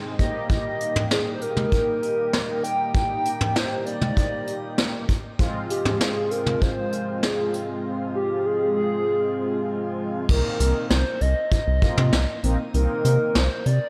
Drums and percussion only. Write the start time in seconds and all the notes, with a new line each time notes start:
0.19 kick, closed hi-hat
0.50 kick, closed hi-hat
0.81 closed hi-hat
0.96 mid tom
1.11 snare, closed hi-hat
1.41 closed hi-hat
1.57 mid tom
1.72 kick, closed hi-hat
2.03 closed hi-hat
2.33 snare, closed hi-hat
2.64 closed hi-hat
2.95 kick, closed hi-hat
3.25 closed hi-hat
3.41 mid tom
3.56 snare, closed hi-hat
3.86 closed hi-hat
4.01 mid tom
4.17 kick, closed hi-hat
4.47 closed hi-hat
4.78 snare, closed hi-hat
5.09 kick, closed hi-hat
5.39 kick, closed hi-hat
5.70 closed hi-hat
5.85 mid tom
6.00 snare, closed hi-hat
6.31 closed hi-hat
6.46 mid tom
6.62 kick, closed hi-hat
6.92 closed hi-hat
7.23 snare, closed hi-hat
7.54 closed hi-hat
10.29 kick, crash
10.60 closed hi-hat
10.90 snare, closed hi-hat
11.21 closed hi-hat
11.51 kick, closed hi-hat
11.82 kick, closed hi-hat
11.98 mid tom
12.13 snare, closed hi-hat
12.43 closed hi-hat
12.74 closed hi-hat
13.05 closed hi-hat
13.35 snare, closed hi-hat
13.66 closed hi-hat